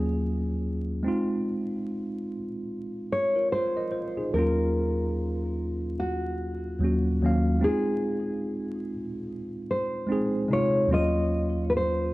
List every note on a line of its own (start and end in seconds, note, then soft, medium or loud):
0.00 0.81 D#2 medium
0.00 0.81 F#3 medium
0.00 0.82 A#3 medium
0.00 0.83 C#4 medium
0.00 0.83 G#4 medium
1.03 2.35 G#3 medium
1.03 2.36 C4 medium
1.03 2.37 D#4 medium
1.08 2.38 F4 medium
3.12 3.52 C#5 medium
3.36 3.51 F4 soft
3.36 3.51 A#4 medium
3.52 3.77 F4 medium
3.52 4.33 C5 medium
3.52 3.76 C5 medium
3.77 3.92 A#4 soft
3.77 3.92 D#5 medium
3.92 4.15 F4 soft
3.92 4.15 C5 medium
4.17 4.56 D#4 soft
4.17 4.56 G#4 medium
4.33 5.65 D#2 medium
4.33 5.65 F#3 medium
4.33 5.66 A#3 medium
4.33 5.66 C#4 medium
4.33 5.53 A#4 medium
4.38 5.67 F4 medium
6.00 7.64 F#4 medium
6.79 7.14 D#2 medium
6.79 7.14 F#3 medium
6.79 7.15 A#3 medium
6.83 7.16 C#4 medium
6.83 7.16 F#4 medium
7.21 7.55 D#2 medium
7.21 7.56 F#3 medium
7.21 7.56 A#3 medium
7.21 7.57 C#4 medium
7.26 7.58 F5 medium
7.60 8.92 G#3 medium
7.60 8.93 C4 medium
7.60 8.94 D#4 medium
7.64 8.95 F4 medium
7.64 9.24 G#4 loud
9.71 10.53 C5 medium
10.07 10.42 G#3 medium
10.07 10.43 C4 medium
10.07 10.43 D#4 medium
10.12 10.44 G#4 medium
10.48 10.84 C3 medium
10.48 10.83 G#3 medium
10.48 10.85 D#4 medium
10.53 10.86 F4 medium
10.53 10.93 C#5 medium
10.87 12.14 D#2 medium
10.87 12.14 F#3 medium
10.87 12.14 A#3 medium
10.87 12.14 C#4 medium
10.93 12.14 F4 medium
10.93 11.69 D#5 loud
11.70 11.74 B4 medium
11.77 12.14 C5 medium